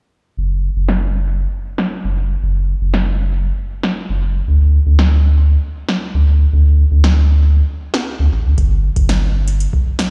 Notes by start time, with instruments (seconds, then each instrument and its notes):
0.37 analog synth bass F#1
0.76 analog synth bass F#1
0.89 snare
1.78 snare
2.04 analog synth bass F#1
2.42 analog synth bass F#1
2.81 analog synth bass F#1
2.94 snare
3.83 snare
4.09 analog synth bass F#1
4.48 analog synth bass D2
4.86 analog synth bass D2
4.99 snare
5.89 snare
6.14 analog synth bass D2
6.53 analog synth bass D2
6.91 analog synth bass D2
7.04 snare
7.94 snare
8.19 analog synth bass D2
8.32 analog synth bass A1
8.45 analog synth bass D2
8.58 analog synth bass G1, kick, closed hi-hat
8.96 analog synth bass G1, kick, closed hi-hat
9.09 snare, closed hi-hat
9.48 closed hi-hat
9.60 closed hi-hat
9.73 kick
9.99 snare, closed hi-hat